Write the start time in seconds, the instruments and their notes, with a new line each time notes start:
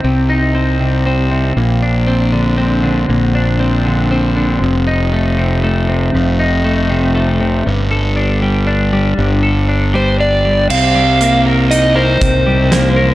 Already playing: clean electric guitar C4
0.04 fingered electric bass C2, clean electric guitar C3
0.30 clean electric guitar D#4
0.55 clean electric guitar C4
0.80 clean electric guitar C3
1.06 clean electric guitar C4
1.31 clean electric guitar C3
1.57 fingered electric bass A#1, clean electric guitar A#2
1.83 clean electric guitar D4
2.07 clean electric guitar C4
2.32 clean electric guitar D3
2.58 clean electric guitar C4
2.83 clean electric guitar D3
3.09 fingered electric bass A#1, clean electric guitar A#2
3.35 clean electric guitar D4
3.60 clean electric guitar C4
3.86 clean electric guitar D3
4.11 clean electric guitar C4
4.36 clean electric guitar D3
4.62 fingered electric bass F1, clean electric guitar F2
4.87 clean electric guitar D#4
5.13 clean electric guitar A3
5.38 clean electric guitar C3
5.64 clean electric guitar A3
5.89 clean electric guitar C3
6.14 fingered electric bass F1, clean electric guitar F2
6.40 clean electric guitar D#4
6.65 clean electric guitar A3
6.90 clean electric guitar C3
7.15 clean electric guitar A3
7.41 clean electric guitar C3
7.66 fingered electric bass G1, clean electric guitar G2
7.91 clean electric guitar A4
8.17 clean electric guitar D4
8.42 clean electric guitar G3
8.67 clean electric guitar D4
8.93 clean electric guitar G3
9.18 fingered electric bass G1, clean electric guitar G2
9.43 clean electric guitar A4
9.69 clean electric guitar D4
9.94 clean electric guitar G3, electric slide guitar C5
10.20 clean electric guitar D4, electric slide guitar D5
10.45 clean electric guitar G3
10.70 fingered electric bass C2, clean electric guitar C3, electric slide guitar F5, crash
10.95 clean electric guitar G3
11.21 clean electric guitar A#3, closed hi-hat
11.46 clean electric guitar A#4
11.71 clean electric guitar D#4, electric slide guitar D#5, closed hi-hat
11.96 clean electric guitar A#4, electric slide guitar C5
12.21 fingered electric bass C2, clean electric guitar C3, kick, closed hi-hat
12.47 clean electric guitar G3
12.72 clean electric guitar A#3, snare, closed hi-hat
12.96 clean electric guitar A#4